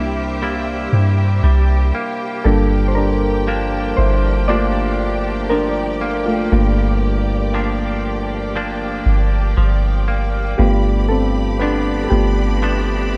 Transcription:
0.00 0.89 C2 loud
0.00 2.45 C3 medium
0.00 0.42 G3 medium
0.00 2.45 G3 medium
0.00 0.43 A#3 medium
0.00 2.41 A#3 medium
0.00 2.42 D4 soft
0.00 0.42 E4 medium
0.00 2.47 E4 medium
0.00 10.55 G4 medium
0.00 2.41 C5 medium
0.00 2.41 E5 medium
0.00 10.55 G5 medium
0.42 1.43 G3 medium
0.42 1.94 A#3 medium
0.42 2.56 E4 medium
0.93 1.42 G2 loud
1.43 1.92 C2 loud
1.43 3.47 G3 medium
1.95 3.48 A#3 medium
2.44 3.94 G1 loud
2.44 6.51 G2 medium
2.44 6.48 G3 medium
2.44 4.48 A#3 medium
2.44 2.87 D4 medium
2.44 4.48 F4 medium
2.44 2.86 A4 medium
2.44 13.17 D5 medium
2.88 2.95 C5 medium
2.95 3.94 D4 medium
2.95 3.93 A#4 medium
3.47 4.49 F3 medium
3.47 4.48 A#3 medium
3.47 4.50 D4 medium
3.97 6.48 G1 loud
3.97 4.46 E4 medium
3.97 4.45 C5 loud
4.48 5.50 F3 medium
4.48 4.96 A3 soft
4.48 4.96 A#3 soft
4.48 6.00 A#3 medium
4.48 7.55 D4 medium
4.48 5.47 F4 medium
4.48 5.46 D5 loud
5.50 7.54 F3 medium
5.50 6.23 D4 medium
5.50 6.29 A#4 medium
6.01 7.53 A#3 medium
6.26 6.51 A3 medium
6.26 6.52 F4 medium
6.52 9.02 G1 loud
6.52 10.58 G2 medium
6.52 7.20 A3 medium
6.52 7.20 A#3 medium
6.52 7.20 F4 medium
7.54 8.55 F3 medium
7.54 8.55 A#3 medium
7.54 8.56 D4 medium
8.56 9.57 F3 medium
8.56 10.07 A#3 medium
8.56 11.61 D4 medium
9.06 9.55 G1 loud
9.57 10.55 G1 loud
9.57 11.60 F3 medium
10.08 10.69 A#3 medium
10.58 12.07 G1 loud
10.58 13.17 G2 medium
10.58 11.26 A3 medium
10.58 11.07 B3 medium
10.58 11.27 F4 medium
10.58 11.11 G4 medium
10.58 13.17 G4 medium
10.58 13.17 B5 medium
11.09 11.58 C4 medium
11.09 11.61 A4 medium
11.59 12.61 F3 medium
11.59 12.62 B3 medium
11.59 12.62 D4 medium
11.59 12.02 D4 medium
11.59 12.05 B4 medium
12.04 12.11 A4 medium
12.10 13.17 G1 loud
12.10 12.58 A3 medium
12.10 13.17 B3 medium
12.10 12.59 F4 medium
12.10 13.17 G4 medium
12.62 13.17 F3 medium
12.62 13.17 B3 medium
12.62 13.17 D4 medium
12.62 13.17 E5 medium

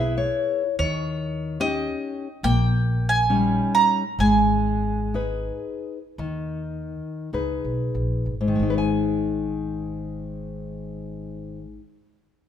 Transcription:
0.00 0.22 B1 medium
0.00 0.62 E4 soft
0.00 0.62 G#4 soft
0.00 0.63 B4 medium
0.00 0.16 E5 medium
0.18 0.74 C#5 medium
0.79 1.86 D#2 loud
0.79 1.57 D#3 medium
0.79 1.60 C#5 medium
1.60 2.26 C#4 medium
1.60 2.26 D#4 medium
1.60 2.27 G4 medium
1.60 2.46 D#5 medium
2.43 3.58 A#1 loud
2.43 3.27 A#3 medium
2.43 3.09 G5 loud
3.09 3.74 G#5 loud
3.30 4.03 G3 medium
3.30 4.02 C#4 medium
3.30 4.02 D#4 soft
3.75 4.20 A#5 loud
4.19 5.49 G#1 loud
4.19 5.13 G#3 medium
4.19 7.29 G#5 medium
5.14 5.98 D#4 medium
5.14 5.98 G#4 soft
5.14 5.98 B4 medium
6.18 6.92 D#2 medium
6.18 7.29 D#3 medium
7.33 7.60 C#2 medium
7.33 8.34 D#4 soft
7.33 8.34 G#4 soft
7.33 8.34 B4 medium
7.64 7.92 B1 medium
7.95 8.23 A#1 medium
8.26 8.55 G#1 medium
8.41 11.58 G#2 soft
8.48 11.65 D#3 soft
8.55 11.72 G#3 soft
8.59 11.77 G#1 medium
8.59 11.80 D#4 soft
8.70 8.77 B4 soft
8.78 11.95 G#5 medium

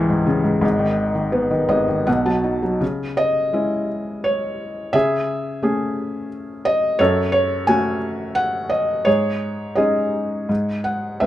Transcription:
0.00 0.65 C#2 medium
0.00 0.09 G#2 medium
0.00 0.25 C#3 medium
0.00 0.65 E3 medium
0.00 2.04 G#4 medium
0.00 0.65 A4 medium
0.00 0.65 C#5 medium
0.00 2.03 E5 medium
0.00 0.65 F#5 medium
0.00 0.65 G#5 loud
0.09 0.43 G#2 medium
0.26 0.61 C#3 medium
0.44 0.60 G#2 medium
0.61 1.67 G#1 medium
0.61 1.67 G#2 medium
0.79 1.13 D#3 medium
1.15 1.49 D#3 soft
1.32 2.04 B3 medium
1.50 1.86 D#3 soft
1.69 2.04 G#1 medium
1.69 2.06 G#2 medium
1.69 2.04 D#5 medium
1.88 2.06 D#3 soft
2.07 2.77 B1 medium
2.07 2.79 B2 medium
2.07 2.25 F#5 medium
2.26 2.61 F#3 soft
2.26 2.78 A5 medium
2.44 2.80 D#4 soft
2.63 2.81 F#3 soft
2.81 4.89 C#3 soft
3.17 3.85 D#5 medium
3.53 4.89 G#3 soft
3.53 4.90 C#4 soft
3.53 4.90 E4 soft
4.24 4.96 C#5 medium
4.93 6.96 C#3 soft
4.93 5.62 G#4 medium
4.93 6.27 E5 medium
5.62 6.95 A3 soft
5.62 6.96 C#4 soft
5.62 6.96 G#4 soft
6.65 7.00 D#5 medium
6.99 9.03 F#2 medium
6.99 7.98 A4 medium
6.99 7.31 C#5 medium
7.32 7.68 C#5 medium
7.67 9.03 A3 soft
7.67 9.03 C#4 soft
7.67 9.03 F#4 medium
7.67 8.38 G#5 medium
8.35 8.68 F#5 medium
8.70 9.07 D#5 medium
9.05 10.45 G#2 medium
9.05 9.75 G#4 medium
9.05 9.79 C#5 medium
9.75 10.47 G#3 soft
9.75 10.47 C#4 soft
9.75 10.48 D#4 soft
9.75 10.82 G#4 medium
9.75 10.88 D#5 medium
10.49 11.19 G#2 medium
10.84 11.22 F#5 medium
11.20 11.26 C#2 soft
11.20 11.26 B4 medium
11.20 11.26 E5 medium

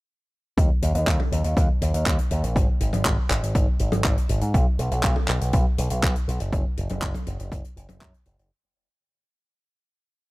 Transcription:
0.58 0.68 D#2 loud
0.58 kick loud
0.58 closed hi-hat loud
0.82 0.93 D#2 loud
0.82 closed hi-hat loud
0.95 1.05 D#2 medium
0.95 closed hi-hat medium
1.07 1.18 D#2 loud
1.07 kick loud
1.07 clap loud
1.07 closed hi-hat loud
1.20 high tom medium
1.32 1.43 D#2 medium
1.32 closed hi-hat medium
1.44 1.55 D#2 medium
1.44 closed hi-hat medium
1.57 1.67 D#2 loud
1.57 kick loud
1.57 closed hi-hat medium
1.82 1.92 D#2 medium
1.82 closed hi-hat loud
1.94 2.05 D#2 medium
1.94 closed hi-hat medium
2.06 2.17 D#2 loud
2.06 kick loud
2.06 clap loud
2.06 closed hi-hat medium
2.19 closed hi-hat medium
2.31 2.42 D#2 medium
2.31 closed hi-hat medium
2.43 2.54 A#1 medium
2.43 closed hi-hat medium
2.56 2.67 G#1 loud
2.56 kick loud
2.56 closed hi-hat medium
2.80 2.91 G#1 medium
2.80 closed hi-hat medium
2.93 3.04 G#1 medium
2.93 closed hi-hat medium
2.93 high tom medium
3.05 3.16 G#1 loud
3.05 kick loud
3.05 clap loud
3.05 closed hi-hat medium
3.30 3.41 G#1 medium
3.30 clap medium
3.30 closed hi-hat loud
3.42 3.53 G#1 medium
3.42 closed hi-hat medium
3.55 3.66 G#1 loud
3.55 kick loud
3.55 closed hi-hat loud
3.79 3.91 G#1 medium
3.79 closed hi-hat medium
3.92 4.03 G#1 medium
3.92 closed hi-hat medium
3.92 high tom medium
4.04 4.15 G#1 loud
4.04 kick loud
4.04 clap loud
4.04 closed hi-hat medium
4.18 closed hi-hat medium
4.29 4.40 G#1 medium
4.29 closed hi-hat medium
4.41 4.52 G#2 medium
4.41 closed hi-hat medium
4.54 4.65 B1 loud
4.54 kick loud
4.54 closed hi-hat medium
4.79 4.90 B1 loud
4.79 closed hi-hat medium
4.91 5.02 B1 medium
4.91 closed hi-hat medium
5.03 5.15 B1 loud
5.03 kick loud
5.03 clap loud
5.03 closed hi-hat medium
5.16 high tom medium
5.28 5.39 B1 medium
5.28 clap medium
5.28 closed hi-hat medium
5.41 5.52 B1 medium
5.41 closed hi-hat medium
5.53 5.64 B1 loud
5.53 kick loud
5.53 closed hi-hat medium
5.78 5.89 B1 medium
5.78 closed hi-hat loud
5.90 6.01 B1 medium
5.90 closed hi-hat medium
6.03 6.14 B1 loud
6.03 kick loud
6.03 clap loud
6.03 closed hi-hat medium
6.16 closed hi-hat medium
6.28 6.39 B1 loud
6.28 closed hi-hat medium
6.40 6.51 F#1 medium
6.40 closed hi-hat medium
6.53 6.63 F#1 loud
6.53 kick loud
6.53 closed hi-hat medium
6.77 6.88 F#1 loud
6.77 closed hi-hat medium
6.89 7.01 F#1 medium
6.89 closed hi-hat medium
6.89 high tom medium
7.02 7.13 F#1 loud
7.02 kick loud
7.02 clap loud
7.02 closed hi-hat medium
7.14 closed hi-hat medium
7.14 high tom medium
7.27 7.38 F#1 medium
7.27 closed hi-hat medium
7.39 7.50 F#1 medium
7.39 closed hi-hat medium
7.52 7.62 F#1 loud
7.52 kick loud
7.52 closed hi-hat loud
7.64 closed hi-hat medium
7.76 7.87 F#1 medium
7.76 closed hi-hat loud
7.89 8.00 F#1 medium
7.89 closed hi-hat medium
7.89 high tom medium
8.01 8.12 F#2 loud
8.01 kick loud
8.01 clap loud
8.01 closed hi-hat medium
8.14 closed hi-hat medium
8.26 8.37 F#1 loud
8.26 closed hi-hat medium
8.38 8.49 F#1 medium
8.38 closed hi-hat medium

